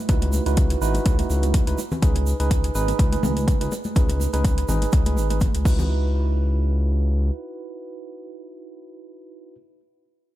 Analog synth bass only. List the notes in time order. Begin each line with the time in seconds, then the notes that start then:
0.09 C#2
0.46 C#2
0.81 G#1
1.06 C#2
1.30 C#2
1.67 C#2
2.02 C#2
2.40 C#2
2.75 G#1
2.99 C#2
3.23 C#2
3.61 C#2
3.96 C#2
4.33 C#2
4.69 G#1
4.93 C#2
5.17 G#1
5.55 C#2
5.65 C#2